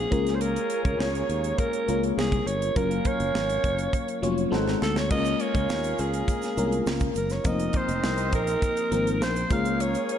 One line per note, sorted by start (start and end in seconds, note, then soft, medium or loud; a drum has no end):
0.00 0.13 F3 medium
0.00 0.11 A#3 medium
0.00 0.13 C4 medium
0.00 0.13 D#4 medium
0.00 0.10 F4 medium
0.00 0.36 G#4 medium
0.00 0.12 A#4 medium
0.11 0.56 C#2 medium
0.11 1.09 G#3 medium
0.11 1.10 A#3 medium
0.11 2.43 A#3 medium
0.11 1.10 C#4 medium
0.11 2.43 C#4 medium
0.11 1.10 F4 medium
0.11 2.43 G#4 medium
0.11 1.10 A#4 medium
0.11 2.43 C#5 medium
0.11 kick medium
0.11 closed hi-hat medium
0.27 snare soft
0.27 closed hi-hat soft
0.35 0.42 C5 medium
0.41 0.84 A#4 loud
0.41 closed hi-hat medium
0.56 closed hi-hat medium
0.70 closed hi-hat medium
0.85 0.96 C#2 medium
0.85 1.01 A#4 medium
0.85 kick medium
0.85 closed hi-hat soft
0.99 1.22 C#2 medium
0.99 1.60 C#5 loud
0.99 snare loud
1.15 closed hi-hat medium
1.29 1.52 D#2 medium
1.29 closed hi-hat medium
1.44 closed hi-hat medium
1.58 2.03 A#4 medium
1.58 kick medium
1.58 closed hi-hat medium
1.73 closed hi-hat soft
1.88 2.11 C#2 medium
1.88 2.62 G#3 medium
1.88 2.62 A#3 medium
1.88 2.62 C#4 medium
1.88 2.62 F4 medium
1.88 2.62 A#4 medium
1.88 closed hi-hat medium
2.03 closed hi-hat soft
2.17 2.40 C2 medium
2.17 2.48 G#4 medium
2.17 snare loud
2.32 kick medium
2.32 closed hi-hat soft
2.46 2.69 G1 medium
2.46 2.78 C#5 medium
2.46 closed hi-hat medium
2.62 closed hi-hat soft
2.76 2.98 F#1 loud
2.76 3.74 F#3 medium
2.76 3.74 A#3 medium
2.76 3.74 C#4 medium
2.76 4.21 C#4 medium
2.76 3.74 F4 medium
2.76 4.21 F4 medium
2.76 3.08 A#4 medium
2.76 3.75 A#4 medium
2.76 4.21 A#4 medium
2.76 4.21 F5 medium
2.76 kick loud
2.76 closed hi-hat medium
2.91 closed hi-hat medium
3.05 4.53 C#5 loud
3.05 kick medium
3.05 closed hi-hat medium
3.20 3.31 F#1 medium
3.20 closed hi-hat soft
3.35 3.57 G#1 medium
3.35 snare loud
3.49 closed hi-hat medium
3.64 3.86 F#1 medium
3.64 kick medium
3.64 closed hi-hat medium
3.78 closed hi-hat medium
3.93 kick medium
3.93 closed hi-hat medium
4.08 closed hi-hat soft
4.22 4.45 F1 medium
4.22 4.52 F#3 medium
4.22 4.52 A#3 medium
4.22 4.52 C#4 medium
4.22 4.52 F4 medium
4.22 4.52 C#5 medium
4.22 closed hi-hat medium
4.38 closed hi-hat soft
4.51 4.74 G#1 medium
4.51 5.00 G#3 medium
4.51 5.01 C4 medium
4.51 5.01 D#4 medium
4.51 4.81 D#4 medium
4.51 5.01 F#4 medium
4.51 4.81 F#4 medium
4.51 5.01 A4 medium
4.51 4.81 C5 medium
4.51 4.81 F#5 medium
4.51 snare soft
4.68 snare medium
4.82 5.11 D2 medium
4.82 4.99 A4 medium
4.82 snare medium
4.96 5.11 C#5 medium
4.96 snare medium
5.10 5.33 C#2 loud
5.10 6.09 G#3 medium
5.10 6.09 A#3 medium
5.10 7.12 C#4 medium
5.10 6.09 C#4 medium
5.10 7.12 F4 medium
5.10 6.09 F4 medium
5.10 7.12 A#4 medium
5.10 6.09 A#4 medium
5.10 5.42 D#5 loud
5.10 7.12 F5 medium
5.10 kick loud
5.10 crash medium
5.10 shaker medium
5.25 closed hi-hat medium
5.25 shaker medium
5.40 6.02 C#5 loud
5.40 closed hi-hat medium
5.55 5.66 C#2 medium
5.55 kick medium
5.55 closed hi-hat soft
5.55 shaker soft
5.69 5.92 D#2 medium
5.69 snare loud
5.69 shaker medium
5.83 closed hi-hat medium
5.83 shaker soft
5.98 6.21 C#2 medium
5.98 6.87 G#4 medium
5.98 closed hi-hat medium
5.98 shaker soft
6.14 closed hi-hat medium
6.14 shaker medium
6.28 kick medium
6.28 closed hi-hat medium
6.28 shaker medium
6.42 snare soft
6.42 closed hi-hat soft
6.42 shaker soft
6.57 6.80 C2 medium
6.57 7.31 G#3 medium
6.57 7.31 A#3 medium
6.57 7.31 C#4 medium
6.57 7.31 F4 medium
6.57 7.32 A#4 medium
6.57 closed hi-hat medium
6.57 shaker medium
6.72 closed hi-hat soft
6.72 shaker soft
6.86 7.09 C#2 medium
6.86 snare loud
6.86 shaker medium
7.00 kick medium
7.00 closed hi-hat soft
7.00 shaker medium
7.15 7.38 F#1 medium
7.15 7.33 A#4 medium
7.15 closed hi-hat medium
7.15 shaker soft
7.30 7.49 C#5 medium
7.30 snare soft
7.30 closed hi-hat soft
7.30 shaker soft
7.44 7.67 F1 loud
7.44 8.43 F3 medium
7.44 8.43 A#3 medium
7.44 9.17 C4 medium
7.44 8.43 C4 medium
7.44 9.17 D#4 medium
7.44 8.43 D#4 medium
7.44 9.17 A#4 medium
7.44 8.43 A#4 medium
7.44 9.17 D#5 medium
7.44 7.78 D#5 loud
7.44 kick loud
7.44 closed hi-hat medium
7.44 shaker medium
7.60 closed hi-hat medium
7.60 shaker medium
7.73 8.34 C5 loud
7.73 kick medium
7.73 closed hi-hat medium
7.89 8.00 F1 medium
7.89 closed hi-hat soft
7.89 shaker soft
8.04 8.33 C2 medium
8.04 snare loud
8.04 shaker medium
8.17 closed hi-hat soft
8.17 shaker soft
8.32 8.55 A#1 medium
8.32 9.18 A#4 loud
8.32 kick medium
8.32 closed hi-hat medium
8.32 shaker soft
8.47 closed hi-hat medium
8.47 shaker soft
8.62 kick medium
8.62 closed hi-hat medium
8.62 shaker medium
8.77 closed hi-hat soft
8.77 shaker soft
8.91 9.21 G#1 medium
8.91 9.50 F3 medium
8.91 9.50 A#3 medium
8.91 9.51 C4 medium
8.91 9.51 D#4 medium
8.91 9.51 A#4 medium
8.91 closed hi-hat medium
8.91 shaker medium
9.07 closed hi-hat soft
9.07 shaker soft
9.21 9.44 A#1 medium
9.21 9.50 C5 loud
9.21 snare loud
9.21 shaker medium
9.36 closed hi-hat soft
9.36 shaker medium
9.50 9.95 C#2 medium
9.50 10.18 G#3 medium
9.50 10.18 A#3 medium
9.50 10.18 C#4 medium
9.50 10.18 F4 medium
9.50 10.18 G#4 medium
9.50 10.18 A#4 medium
9.50 10.18 C#5 medium
9.50 9.83 F5 medium
9.50 kick loud
9.50 closed hi-hat medium
9.50 shaker soft
9.65 closed hi-hat soft
9.65 shaker soft
9.80 10.10 C#5 loud
9.80 closed hi-hat medium
9.80 shaker medium
9.94 closed hi-hat medium
9.94 shaker medium
10.09 10.18 C#5 medium
10.09 closed hi-hat medium